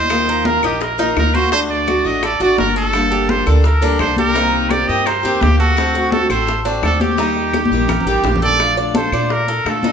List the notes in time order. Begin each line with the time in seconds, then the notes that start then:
Already playing: D#2 G3 D4 E4 C5 D#5
0.09 D#3 A#3 D#4 F4 A#4, high bongo, high conga, claves
0.28 A#4, high bongo, high conga
0.45 A#4, high bongo, high conga
0.62 A#1 A#3 D#4 F4 G4 A#4 D#5, high bongo, high conga, claves
0.80 A#4, muted steel-string acoustic guitar stroke, high bongo, high conga
0.98 A#3 D#4 F4 A#4, high bongo, high conga
1.16 D2 A#3 D#4 F4 A#4, high bongo, low bongo, high conga, claves
1.34 F#4 C5, high conga
1.52 D3 A3 D4 F#4 C5, high bongo, high conga
1.70 D5, high bongo, high conga
1.88 F#4, high bongo, high conga, claves
2.05 A1 A3 D4 F#4 D#5, high conga
2.23 A4 D5, muted steel-string acoustic guitar stroke, high bongo, high conga, claves
2.40 A1 A3 D4 F#4 D5, high bongo, high conga
2.58 G1 D3 A3 D4 F#4 A#4, high bongo, low bongo, high conga
2.76 A4, high bongo
2.93 D3 G3 A#3 D4 A4, high bongo, high conga, claves
3.12 G4, high bongo, high conga
3.29 C5, high bongo, high conga
3.46 D2 G3 A#3 D4 A4, high bongo, claves
3.64 A#4, muted steel-string acoustic guitar stroke, high bongo, high conga
3.81 G3 A#3 D4 A4, high bongo, high conga
3.99 C2 G3 A#3 D4 A4 C5, high bongo, low bongo, high conga, claves
4.17 G4 A#4, high conga
4.35 C3 D#3 A#3 C4 D#4 G4, high bongo, high conga
4.53 high bongo, high conga
4.70 G4 D5, high bongo, high conga, claves
4.88 G2 D#3 A#3 C4 G4 D#5, high conga
5.06 A#4 C5, muted steel-string acoustic guitar stroke, high bongo, high conga, claves
5.23 D#2 D#3 A#3 C4 G4, high bongo, high conga
5.41 D2 A#3 C4 G4, high bongo, low bongo, high conga
5.59 F#4 A4, high bongo
5.77 D3 A3 C4 F#4, high bongo, high conga, claves
5.94 F#4, high bongo, high conga
6.11 A4, high bongo, high conga
6.29 A1 A3 C4 F#4 A4 C5, high bongo, high conga, claves
6.47 muted steel-string acoustic guitar stroke, high bongo, high conga
6.65 A3 C4 D4 F#4, high bongo, high conga
6.82 D#2 D3 A3 C4 F#4 A4, high bongo, low bongo, high conga, claves
7.00 G4, high conga
7.17 D#3 G3 A#3 D#4 G4, high bongo, high conga
7.36 high bongo, high conga
7.53 G4, high bongo, high conga, claves
7.65 high conga
7.71 A#1 G3 A#3 D#4 G4
7.88 A#4, muted steel-string acoustic guitar stroke, high bongo, low conga, claves
8.00 low conga
8.06 A1 G3 A#3 D#4 G4, high bongo
8.23 A#1 G3 A#3 D#4 G4, high bongo, low bongo, low conga
8.36 low conga
8.42 A4 D5, high bongo
8.48 low conga
8.59 D3 A3 D4 F4, high bongo, high conga, claves
8.76 D5, high bongo, high conga
8.95 D3 A3 D4 F4 A4 C5, high bongo, high conga
9.12 A#2 A3 D4 F4 D5, high bongo, high conga, claves
9.29 A#4, high bongo, high conga
9.47 A4, muted steel-string acoustic guitar stroke, high bongo, high conga
9.65 A#2 D3 A3 D4 F4 A4, high bongo, low bongo, high conga, claves
9.83 A3 D4 D#4 F4, high conga